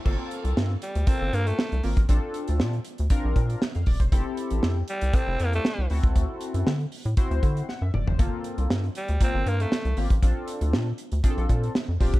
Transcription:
<<
  \new Staff \with { instrumentName = "Analog polysynth" } { \time 4/4 \key g \dorian \tempo 4 = 118 << { r1 | r2. r16 f''16 d''16 c''16~ | c''16 r2. r8. | r2. fis''16 e''16 d''16 c''16~ |
c''16 r2. r8. | r1 | } \\ { <bes c' f' a'>4~ <bes c' f' a'>16 r8. <bes c' f' a'>4 r8 <bes c' f' bes'>8 | <c' d' f' a'>4~ <c' d' f' a'>16 r8. <c' d' f' bes'>4 r4 | <c' e' g' a'>4~ <c' e' g' a'>16 r8. <c' e' g' a'>4 r8 <c' e' fis' a'>8~ | <c' e' fis' a'>4 r4 <c' e' fis' c''>4 r4 |
<bes c' f' a'>4~ <bes c' f' a'>16 r8. <bes c' f' bes'>4 r8 <bes c' f' g'>8 | <c' d' f' a'>4~ <c' d' f' a'>16 r8. <c' d' f' aes' a'>4 r8 <c' d' f' g'>8 | } >> }
  \new Staff \with { instrumentName = "Alto saxophone" } { \time 4/4 \key g \dorian r4. g8 c'8 bes16 a8. r8 | r1 | r4. g8 c'8 bes16 a8. r8 | r1 |
r4. g8 c'8 bes16 a8. r8 | r1 | }
  \new Staff \with { instrumentName = "Analog synth bass" } { \clef bass \time 4/4 \key g \dorian g,,16 r8 c,16 g,8 r16 d,16 r16 g,,16 g,8 r16 c,16 aes,,16 a,,16 | bes,,16 r8 d,16 bes,8 r16 d,16 r16 bes,,16 bes,8 r16 f,16 ees,,16 e,,16 | f,,16 r8 a,,16 f,8 r16 c,16 r16 f,,16 f,8 r16 c,16 d,16 cis,16 | d,16 r8 fis,16 d8 r16 a,16 r16 d,16 d8 r16 fis,16 f,,16 fis,,16 |
g,,16 r8 c,16 g,8 r16 d,16 r16 g,,16 g,8 r16 c,16 aes,,16 a,,16 | bes,,16 r8 d,16 bes,8 r16 d,16 r16 bes,,16 bes,8 r16 f,16 ees,,16 e,,16 | }
  \new DrumStaff \with { instrumentName = "Drums" } \drummode { \time 4/4 <cymc bd>8 hh16 hh16 sn8 hh16 hh16 <hh bd>8 hh16 hh16 sn16 hh16 hho16 <hh bd>16 | <hh bd>8 hh16 hh16 sn16 hh16 hh16 hh16 <hh bd>8 <hh bd>16 hh16 sn16 hh16 <hho bd>16 <hh bd>16 | <hh bd>8 hh16 hh16 sn8 hh16 hh16 <hh bd>8 hh16 hh16 sn8 hho16 <hh bd>16 | <hh bd>8 hh16 hh16 sn16 hh16 hho16 hh16 <hh bd>16 hh16 <hh bd>16 hh16 sn8 toml16 tomfh16 |
<hh bd>8 hh16 hh16 sn16 hh16 hh16 hh16 <hh bd>8 hh16 hh16 sn16 hh16 hho16 <hh bd>16 | <hh bd>8 hh16 hh16 sn8 hh16 hh16 <hh bd>16 hh16 <hh bd>16 hh16 sn8 <hho bd>16 <hh bd>16 | }
>>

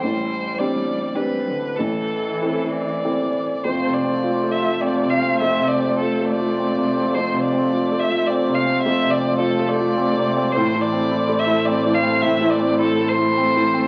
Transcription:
<<
  \new Staff \with { instrumentName = "Violin" } { \time 3/4 \key f \lydian \tempo 4 = 105 c''4 d''4 b'4 | a'4. d''4. | c''8 d''4 e''8 d''8 f''8 | e''8 d''8 a'8 d''4. |
c''8 d''4 e''8 d''8 f''8 | e''8 d''8 a'8 d''4. | c''8 d''4 e''8 d''8 f''8 | e''8 d''8 a'8 c''4. | }
  \new Staff \with { instrumentName = "Harmonium" } { \time 3/4 \key f \lydian << { r2. | r2. | <a c''>2.~ | <a c''>2.~ |
<a c''>2. | <a c''>2.~ | <a c''>2.~ | <a c''>2. | } \\ { r2. | r2. | f'2.~ | f'2.~ |
f'2. | f'2. | e'2.~ | e'2. | } >> }
  \new Staff \with { instrumentName = "Felt piano" } { \time 3/4 \key f \lydian a,,4 <c' d' g'>4 <c' d' g'>4 | a,,4 <c' e' a'>4 <c' e' a'>4 | \tuplet 3/2 { f,8 c8 c'8 f'8 a'8 f'8 c'8 c8 c'8 } | \tuplet 3/2 { f,8 c8 c'8 f'8 a'8 f'8 c'8 c8 c'8 } |
\tuplet 3/2 { f,8 c8 c'8 f'8 a'8 f'8 c'8 c8 c'8 } | \tuplet 3/2 { f,8 c8 c'8 f'8 a'8 f'8 c'8 c8 c'8 } | \tuplet 3/2 { a,8 e8 c'8 e'8 a'8 e'8 c'8 e8 c'8 } | \tuplet 3/2 { a,8 e8 c'8 e'8 a'8 e'8 c'8 e8 c'8 } | }
  \new Staff \with { instrumentName = "Cello" } { \clef bass \time 3/4 \key f \lydian g2 g8 d8 | e2~ e8 r8 | a2.~ | a2.~ |
a2. | a2. | a2.~ | a2. | }
  \new Staff \with { instrumentName = "Double bass" } { \clef bass \time 3/4 \key f \lydian r2. | r2. | f,,2.~ | f,,2.~ |
f,,2. | f,,2. | a,,2.~ | a,,2. | }
>>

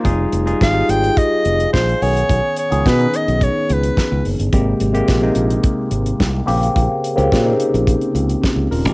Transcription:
<<
  \new Staff \with { instrumentName = "Soprano saxophone" } { \time 4/4 \key bes \dorian \tempo 4 = 107 r4 f''8 g''8 ees''4 c''8 cis''8~ | cis''8 cis''8 b'8 dis''8 cis''8 b'4 r8 | r1 | r1 | }
  \new Staff \with { instrumentName = "Tine electric piano" } { \time 4/4 \key bes \dorian <g ees' f' aes'>8 r16 <g ees' f' aes'>16 r16 <ees' f' g' aes'>4~ <ees' f' g' aes'>16 r4 <dis b cis' gis'>8~ | <dis b cis' gis'>8 r16 <dis b cis' gis'>16 r16 <dis b cis' dis'>4~ <dis b cis' dis'>16 r4. | <c aes bes g'>8 r16 <c aes bes g'>16 r16 <c aes bes ees'>4~ <c aes bes ees'>16 r4 <des bes c' g'>8~ | <des bes c' g'>8 r16 <des bes c' g'>16 r16 <c des bes c' ees'>4~ <c des bes c' ees'>16 r8 <des' g'>8 <f' bes'>16 <des' g'>16 | }
  \new Staff \with { instrumentName = "Fingered electric bass" } { \clef bass \time 4/4 \key bes \dorian f,,8 f,,8 aes,,8 aes,,8 r8 f,,8 bes,,8 b,,8 | b,,16 r8 cis,16 b,8 r16 b,,8 r16 cis,8 r16 cis,16 fis,,16 g,,16 | aes,,8 aes,,8 bes,,8 bes,,8 r8 aes,,8 c,8 bes,,8 | bes,,16 r8 des,16 bes,8 r16 bes,,8 r16 des,8 r16 des,16 ees,,16 e,,16 | }
  \new DrumStaff \with { instrumentName = "Drums" } \drummode { \time 4/4 <hh bd>8 hh16 hh16 <hh bd sn>8 hh16 hh16 <hh bd>8 hh16 hh16 <hh bd sn>16 hh16 hho16 hh16 | <hh bd>8 hh16 hh16 <hh bd sn>16 hh16 hh16 hh16 <hh bd>8 hh16 hh16 <hh bd sn>8 hho16 hh16 | <hh bd>8 hh16 hh16 <hh bd sn>8 hh16 hh16 <hh bd>8 hh16 hh16 <hh bd sn>8 hho16 hh16 | <hh bd>8 hh16 hh16 <hh bd sn>8 hh16 hh16 <hh bd>16 hh16 hh16 hh16 <hh bd sn>8 hho16 hh16 | }
>>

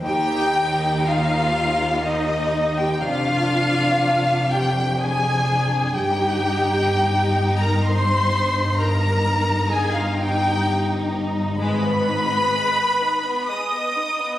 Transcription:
<<
  \new Staff \with { instrumentName = "Violin section" } { \time 3/4 \key ees \major \tempo 4 = 63 g''4 f''4 ees''8. g''16 | f''4. g''8 aes''4 | g''4.~ g''16 bes''16 c'''4 | bes''4 aes''16 f''16 g''4 r8 |
ces'''2 ees'''4 | }
  \new Staff \with { instrumentName = "Viola section" } { \time 3/4 \key ees \major g'4 f'4 ees'8. g'16 | f'4. g'8 aes'4 | g'4.~ g'16 bes'16 c''4 | bes'4 aes'16 f'16 g'4 r8 |
ces''2 ees''4 | }
  \new Staff \with { instrumentName = "Violin section" } { \time 3/4 \key ees \major ees'2 ees'4 | d'2 d'4 | ees'2. | ees'2. |
aes16 ces'16 ees'16 ces'16 aes16 ces'16 ees'16 ces'16 aes16 ces'16 ees'16 ces'16 | }
  \new Staff \with { instrumentName = "Cello section" } { \clef bass \time 3/4 \key ees \major ees,2. | f,2. | g,2.~ | g,2. |
aes,4 r2 | }
  \new Staff \with { instrumentName = "Double bass section" } { \clef bass \time 3/4 \key ees \major ees,2. | f,,2. | g,,2.~ | g,,2. |
aes,,4 r2 | }
>>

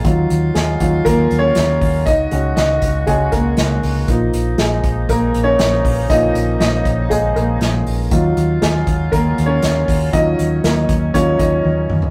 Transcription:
<<
  \new Staff \with { instrumentName = "Upright piano" } { \time 4/4 \key ees \minor \tempo 4 = 119 << { r4 <aes aes'>4 \tuplet 3/2 { <bes bes'>4 <des' des''>8~ } <des' des''>4 | <ees' ees''>4 <ees' ees''>4 aes'8 <bes bes'>4 r8 | r4 <aes aes'>4 \tuplet 3/2 { <bes bes'>4 <des' des''>8~ } <des' des''>4 | ees''4 <ees' ees''>4 <aes aes'>8 <bes bes'>4 r8 |
r4 <aes aes'>4 \tuplet 3/2 { <bes bes'>4 <des' des''>8~ } <des' des''>4 | <ees' ees''>4 <bes bes'>4 des''8 <ees' ees''>4 r8 | } \\ { <ges ees' f'>4. <ges ees' f'>8 r2 | r8 <aes des' ges'>4. <aes des' ges'>8 r4. | <bes ees' f'>8 r2. r8 | <bes ees' f'>4. r2 r8 |
<ges ees' f'>1 | <ges des' f'>2 <ges des' f'>8 r4. | } >> }
  \new Staff \with { instrumentName = "Woodwind section" } { \time 4/4 \key ees \minor <ges ees' f'>1 | <des aes ges'>1 | <f bes ees'>1~ | <f bes ees'>1 |
<ges ees' f'>1 | <ees ges des'>1 | }
  \new Staff \with { instrumentName = "Fingered electric bass" } { \clef bass \time 4/4 \key ees \minor ees,8 ees,8 ees,8 ees,8 ees,8 ees,8 ees,8 ees,8 | des,8 des,8 des,8 des,8 des,8 des,8 des,8 des,8 | bes,,8 bes,,8 bes,,8 bes,,8 bes,,8 bes,,8 bes,,8 bes,,8 | bes,,8 bes,,8 bes,,8 bes,,8 bes,,8 bes,,8 bes,,8 bes,,8 |
ees,8 ees,8 ees,8 ees,8 ees,8 ees,8 ees,8 ees,8 | ees,8 ees,8 ees,8 ees,8 ees,8 ees,8 ees,8 ees,8 | }
  \new DrumStaff \with { instrumentName = "Drums" } \drummode { \time 4/4 <hh bd>8 hh8 <hh sn>8 <hh bd>8 <hh bd>8 hh8 <hh sn>8 <hho bd>8 | <hh bd>8 hh8 <hh sn>8 <hh bd>8 <hh bd>8 <hh bd>8 <hh sn>8 hho8 | <hh bd>8 hh8 <hh sn>8 <hh bd>8 <hh bd>8 hh8 <hh sn>8 <hho bd>8 | <hh bd>8 hh8 <hh sn>8 <hh bd>8 <hh bd>8 hh8 <hh sn>8 hho8 |
<hh bd>8 hh8 <hh sn>8 <hh bd>8 <hh bd>8 hh8 <hh sn>8 <hho bd>8 | <hh bd>8 hh8 <hh sn>8 <hh bd>8 <hh bd>8 <hh bd>8 tommh8 toml16 tomfh16 | }
>>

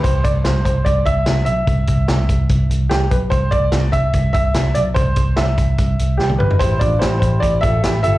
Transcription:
<<
  \new Staff \with { instrumentName = "Upright piano" } { \time 4/4 \key c \major \tempo 4 = 146 c''8 d''8 c''8 c''8 d''8 e''4 e''8~ | e''2~ e''8 r8 g'8 b'8 | c''8 d''4 e''4 e''4 d''8 | c''4 e''2 g'8 b'8 |
c''8 d''8 c''8 c''8 d''8 e''4 e''8 | }
  \new Staff \with { instrumentName = "Clean electric guitar" } { \time 4/4 \key c \major r1 | r1 | r1 | r1 |
<e' g'>8 <d' f'>8 <e' g'>4. <f' a'>8 <e' g'>8 <f' a'>8 | }
  \new Staff \with { instrumentName = "Picked electric bass" } { \clef bass \time 4/4 \key c \major c,8 c,8 c,8 c,8 c,8 c,8 c,8 b,,8 | c,8 c,8 c,8 c,8 c,8 c,8 c,8 b,,8 | c,8 c,8 c,8 c,8 c,8 c,8 c,8 b,,8 | c,8 c,8 c,8 c,8 c,8 c,8 c,8 g,,8 |
a,,8 a,,8 a,,8 a,,8 a,,8 a,,8 a,,8 g,,8 | }
  \new DrumStaff \with { instrumentName = "Drums" } \drummode { \time 4/4 <hh bd>8 <hh bd>8 <hh sn>8 <hh bd>8 <hh bd>8 <hh bd>8 <hh sn>8 hh8 | <hh bd>8 <hh bd>8 <hh sn>8 <hh bd>8 <hh bd>8 hh8 <hh sn>8 <hh bd>8 | <hh bd>8 <hh bd>8 <hh sn>8 <hh bd>8 <hh bd>8 <hh bd>8 <hh sn>8 hh8 | <hh bd>8 <hh bd>8 <hh sn>8 <hh bd>8 <hh bd>8 hh8 sn16 tommh16 toml16 tomfh16 |
<hh bd>8 <hh bd>8 <hh sn>8 <hh bd>8 <hh bd>8 <hh bd>8 <hh sn>8 hh8 | }
>>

